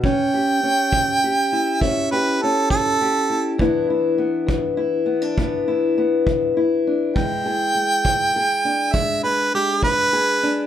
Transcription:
<<
  \new Staff \with { instrumentName = "Harmonica" } { \time 12/8 \key a \major \tempo 4. = 67 g''2. e''8 b'8 a'8 a'4. | r1. | g''2. e''8 b'8 g'8 b'4. | }
  \new Staff \with { instrumentName = "Steel-string acoustic guitar" } { \time 12/8 \key a \major << { cis'8 g'8 cis'4 g'8 e'8 cis'8 g'8 cis'4 g'8 e'8 | <e b d' e'>8 e'8 b4 e'8 b16 d'16 b8 e'8 b4 e'8 d'8 | gis8 gis'8 gis4 gis'8 d'8 gis8 gis'8 gis4 gis'8 d'8 | } \\ { a,4 r8 a,4 r8 a,4 r8 a,4 r8 | e,4 r8 e,4 r8 e,4 r8 e,4 r8 | e,4 r8 e,4 r8 e,4 r8 e,4 r8 | } >> }
  \new DrumStaff \with { instrumentName = "Drums" } \drummode { \time 12/8 bd4. bd4. bd4. bd4. | bd4. bd4. bd4. bd4. | bd4. bd4. bd4. bd4. | }
>>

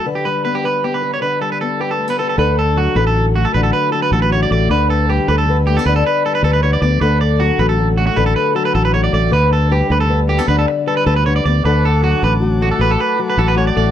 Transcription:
<<
  \new Staff \with { instrumentName = "Transistor combo organ" } { \time 12/8 \key d \major \tempo 4. = 104 r1. | r1. | r1. | r1. |
r1. | <fis'' a'' d'''>1. | }
  \new Staff \with { instrumentName = "Clean electric guitar" } { \time 12/8 \key d \major r16 g'16 b'8 b'16 g'16 b'8 g'16 b'8 cis''16 b'8 a'16 b'16 a'8 g'16 a'8 b'16 a'16 a'16 | b'8 a'8 fis'8 b'16 a'8 r16 fis'16 a'16 b'16 a'16 b'8 a'16 b'16 a'16 b'16 cis''16 d''16 d''8 | b'8 a'8 g'8 b'16 a'8 r16 g'16 a'16 b'16 a'16 b'8 a'16 b'16 a'16 b'16 cis''16 d''16 d''8 | b'8 d''8 fis'8 b'16 a'8 r16 fis'16 fis'16 b'16 a'16 b'8 a'16 b'16 a'16 b'16 cis''16 d''16 d''8 |
b'8 a'8 g'8 b'16 a'8 r16 g'16 a'16 b'16 a'16 r8 a'16 b'16 a'16 b'16 cis''16 d''16 d''8 | b'8 a'8 fis'8 b'16 r8. fis'16 a'16 b'16 a'16 b'8 r16 b'16 a'16 b'16 cis''16 d''16 d''8 | }
  \new Staff \with { instrumentName = "Steel-string acoustic guitar" } { \time 12/8 \key d \major << { b'4 b8 b'8 b8 b'8 b'4 b8 b'8 a16 b16 b'8 | a'4. a'8 fis'8 a4. fis'8 fis'8 fis'8 a8 | b'4 b'8 a'8 b'8 a16 b16 d''4 b'8 b'8 b'8 b8 | a'4 fis'8 a'8 fis'8 a8 a'4 fis'8 fis'8 fis'8 a8 |
b'4 b'8 a'8 b'8 a16 b16 d''4 b'8 b'8 b'8 b8 | a'4 fis'4 fis'8 a8 a'4 fis'8 fis'8 fis'8 a8 | } \\ { d8 g2~ g8 d8 g2~ g8 | d4 fis2 d4 fis4 a,4 | d4 g4 d4 d4 g4 d4 | d4 fis4 a,4 d4 fis4 a,4 |
d4 g4 d4 d4 g4 d4 | d4 fis4 a,4 r4 fis4 a,4 | } >> }
  \new Staff \with { instrumentName = "Fingered electric bass" } { \clef bass \time 12/8 \key d \major r1. | d,4. a,,4. a,,8 r4 a,,4 a,,8 | d,4. d,4. d,8 r4 d,4 d,8 | d,4. a,,4. a,,8 r4 a,,4 a,,8 |
d,4. d,4. d,8 r4 d,4 d,8 | d,4. a,,4. a,,8 r4 a,,4 a,,8 | }
>>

